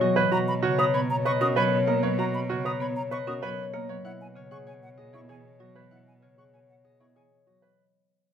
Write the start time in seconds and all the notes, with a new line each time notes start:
Already playing: B2 G#4 B4 C#5 F#5
0.01 F#3 F#4 D#5
0.16 E3 B4
0.32 B2 F#4 A#5
0.48 B5
0.63 C#3 F#4 C#5
0.78 B4 A#5 D#6
0.94 B3 C#5 B5
1.10 A#5
1.25 B4 D#5 C#6
1.41 C#4 F#4 A#4 D#6
1.56 F#3 B4 C#5 B5
1.87 A#3 A#4 D#5
2.03 F#3 B4 C#5
2.18 F#4 A#5
2.34 B5
2.50 C#3 F#4 C#5
2.65 B4 A#5 D#6
2.80 B3 C#5 B5
2.96 A#5
3.11 B4 D#5 C#6
3.27 C#4 F#4 A#4 D#6
3.42 F#3 B4 C#5 B5
3.74 A#3 A#4 D#5
3.89 F#3 B4 C#5
4.05 B2 E4 F#5
4.21 G#5
4.36 C#3 C#5
4.51 G#4 F#5 C#6
4.67 C#5 G#5
4.83 F#5
4.98 G#4 D#5
5.13 B3 E4 G#4 C#6
5.29 E3 G#4 C#5 G#5
5.60 F#3 F#4 D#5
5.75 E3 B4
5.91 E4 F#5
6.07 G#5
6.22 C#3 C#5
6.38 G#4 F#5 C#6
6.53 C#5 G#5
6.69 F#5
6.84 G#4 D#5
7.00 B3 E4 G#4 C#6
7.16 E3 G#4 C#5 G#5
7.47 F#3 F#4 D#5
7.62 E3 B4